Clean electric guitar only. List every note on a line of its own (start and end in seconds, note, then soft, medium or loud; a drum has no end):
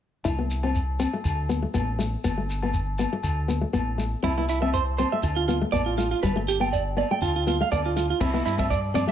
4.24 4.33 E4 medium
4.38 4.45 E4 medium
4.49 4.58 E4 medium
4.62 4.69 E5 medium
4.74 4.82 C5 medium
4.98 5.07 C5 medium
5.12 5.20 E5 medium
5.23 muted clean electric guitar stroke medium
5.36 5.44 F4 medium
5.48 5.57 F4 medium
5.72 5.81 D5 medium
5.86 5.93 F4 medium
5.98 6.07 F4 medium
6.11 6.19 F4 medium
6.23 6.31 B4 medium
6.37 muted clean electric guitar stroke medium
6.48 6.57 G4 medium
6.61 6.68 G5 medium
6.73 6.81 D5 medium
6.98 7.06 D5 medium
7.11 7.18 G5 medium
7.22 7.31 F4 medium
7.36 7.43 F4 medium
7.48 7.56 F4 medium
7.62 7.68 F5 medium
7.72 7.80 D5 medium
7.86 7.93 F4 medium
7.97 8.05 F4 medium
8.10 8.17 F4 medium
8.21 8.30 E4 medium
8.34 8.42 E4 medium
8.46 8.54 E4 medium
8.60 8.67 E5 medium
8.70 8.79 D5 medium
8.95 9.04 D5 medium
9.09 9.12 E5 medium